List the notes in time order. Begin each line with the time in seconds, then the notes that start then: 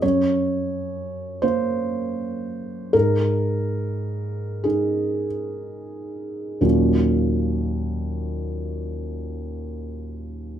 0.02 F#2 C#5
1.42 A#3 C5
2.93 G#2 A#4
4.64 G#3 D#4 G#4
6.61 D#2 A#2 F#3 A#3 C#4 D#4 F#4